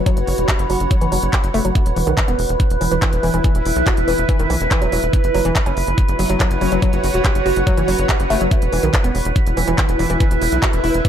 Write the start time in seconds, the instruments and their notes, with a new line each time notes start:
Already playing: ambient pad F#4 C#5 F#5, synth drone B4
0.06 synth arpeggio sound F#3, kick, closed hi-hat
0.17 analog synth bass F#1, closed hi-hat
0.27 analog synth bass F#1, open hi-hat
0.38 analog synth bass E1, closed hi-hat
0.49 synth arpeggio sound G4, kick, clap, closed hi-hat
0.59 analog synth bass F#1, closed hi-hat
0.70 analog synth bass F#1, synth arpeggio sound F#3, open hi-hat
0.80 analog synth bass F#1, closed hi-hat
0.91 synth arpeggio sound F#3, kick, closed hi-hat
1.01 analog synth bass F#1, synth arpeggio sound E3, closed hi-hat
1.12 analog synth bass F#1, synth arpeggio sound F#3, open hi-hat
1.23 analog synth bass F#1, closed hi-hat
1.33 synth arpeggio sound G4, kick, clap, closed hi-hat
1.44 analog synth bass F#1, closed hi-hat
1.54 analog synth bass F#1, synth arpeggio sound A3, open hi-hat
1.65 analog synth bass F#1, synth arpeggio sound F#3, closed hi-hat
1.75 ambient pad E4, kick, closed hi-hat
1.86 analog synth bass E1, closed hi-hat
1.96 analog synth bass E1, synth arpeggio sound E3, ambient pad B4, open hi-hat
2.07 analog synth bass B1, synth arpeggio sound D#3, ambient pad E5, closed hi-hat
2.18 kick, clap, closed hi-hat
2.28 analog synth bass E1, synth arpeggio sound B3, closed hi-hat
2.39 analog synth bass E1, open hi-hat
2.49 analog synth bass E1, closed hi-hat
2.60 kick, closed hi-hat
2.70 analog synth bass E1, closed hi-hat
2.81 analog synth bass E1, synth arpeggio sound E3, open hi-hat
2.91 analog synth bass E1, synth arpeggio sound E3, closed hi-hat
3.02 synth arpeggio sound E3, kick, clap, closed hi-hat
3.13 analog synth bass E1, closed hi-hat
3.23 analog synth bass E1, synth arpeggio sound E3, open hi-hat
3.34 analog synth bass E1, synth arpeggio sound E3, closed hi-hat
3.44 synth arpeggio sound E3, kick, closed hi-hat
3.55 analog synth bass E1, closed hi-hat
3.65 analog synth bass E1, open hi-hat
3.76 analog synth bass B1, closed hi-hat
3.87 synth arpeggio sound F#4, kick, clap, closed hi-hat
3.97 analog synth bass E1, closed hi-hat
4.08 analog synth bass E1, synth arpeggio sound E3, open hi-hat
4.18 analog synth bass E1, closed hi-hat
4.29 synth arpeggio sound E3, kick, closed hi-hat
4.39 analog synth bass E1, synth arpeggio sound D#3, closed hi-hat
4.50 analog synth bass B1, synth arpeggio sound E3, open hi-hat, zap
4.61 analog synth bass E1, closed hi-hat
4.71 synth arpeggio sound E3, kick, clap, closed hi-hat
4.82 analog synth bass E1, synth arpeggio sound F#3, closed hi-hat
4.92 analog synth bass E1, synth arpeggio sound F#3, open hi-hat
5.03 analog synth bass E1, closed hi-hat
5.13 ambient pad F#4, kick, closed hi-hat
5.24 analog synth bass F#1, ambient pad F#5, closed hi-hat
5.31 analog synth bass F#1, synth arpeggio sound F#3, ambient pad C#5, open hi-hat
5.45 analog synth bass E1, synth arpeggio sound E3, closed hi-hat
5.56 kick, clap, closed hi-hat
5.66 analog synth bass F#1, synth arpeggio sound C#4, closed hi-hat
5.77 analog synth bass F#1, open hi-hat
5.87 analog synth bass F#1, closed hi-hat
5.98 kick, closed hi-hat
6.08 analog synth bass F#1, closed hi-hat
6.19 analog synth bass F#1, synth arpeggio sound F#3, wobble bass B3, open hi-hat
6.30 analog synth bass F#1, synth arpeggio sound F#3, closed hi-hat
6.40 synth arpeggio sound F#3, kick, clap, closed hi-hat
6.51 analog synth bass F#1, closed hi-hat
6.61 analog synth bass F#1, synth arpeggio sound F#3, wobble bass C#4, open hi-hat
6.72 analog synth bass F#1, synth arpeggio sound F#3, closed hi-hat
6.82 synth arpeggio sound F#3, kick, closed hi-hat
6.93 analog synth bass F#1, closed hi-hat
7.03 analog synth bass F#1, open hi-hat
7.14 analog synth bass E1, wobble bass F#4, closed hi-hat
7.25 wobble bass F#4, synth arpeggio sound G4, kick, clap, closed hi-hat
7.35 analog synth bass F#1, closed hi-hat
7.46 analog synth bass F#1, synth arpeggio sound F#4, open hi-hat
7.56 analog synth bass F#1, closed hi-hat
7.67 synth arpeggio sound F#3, kick, closed hi-hat
7.77 analog synth bass F#1, synth arpeggio sound E3, closed hi-hat
7.88 analog synth bass F#1, synth arpeggio sound F#3, open hi-hat
7.99 analog synth bass F#1, closed hi-hat
8.09 synth arpeggio sound G4, kick, clap, closed hi-hat
8.20 analog synth bass F#1, closed hi-hat
8.30 analog synth bass F#1, synth arpeggio sound A3, open hi-hat
8.41 analog synth bass F#1, synth arpeggio sound F#3, closed hi-hat
8.51 ambient pad E4, kick, closed hi-hat, riser
8.62 analog synth bass E1, closed hi-hat
8.67 ambient pad B4
8.72 analog synth bass E1, synth arpeggio sound E3, open hi-hat
8.83 analog synth bass B1, synth arpeggio sound D#3, closed hi-hat
8.91 ambient pad E5, kick, clap, closed hi-hat
9.04 analog synth bass E1, synth arpeggio sound B3, closed hi-hat
9.15 analog synth bass E1, open hi-hat
9.25 analog synth bass E1, closed hi-hat
9.36 kick, closed hi-hat
9.46 analog synth bass E1, closed hi-hat
9.57 analog synth bass E1, synth arpeggio sound E3, open hi-hat
9.68 analog synth bass E1, synth arpeggio sound E3, closed hi-hat
9.78 synth arpeggio sound E3, kick, clap, closed hi-hat
9.89 analog synth bass E1, closed hi-hat
9.99 analog synth bass E1, synth arpeggio sound E3, open hi-hat
10.10 analog synth bass E1, synth arpeggio sound E3, closed hi-hat
10.20 synth arpeggio sound E3, kick, closed hi-hat
10.31 analog synth bass E1, closed hi-hat
10.42 analog synth bass E1, open hi-hat
10.52 analog synth bass B1, closed hi-hat
10.63 synth arpeggio sound F#4, kick, clap, closed hi-hat
10.73 analog synth bass E1, closed hi-hat
10.84 analog synth bass E1, synth arpeggio sound E4, open hi-hat
10.94 analog synth bass E1, closed hi-hat
11.05 synth arpeggio sound E3, kick, closed hi-hat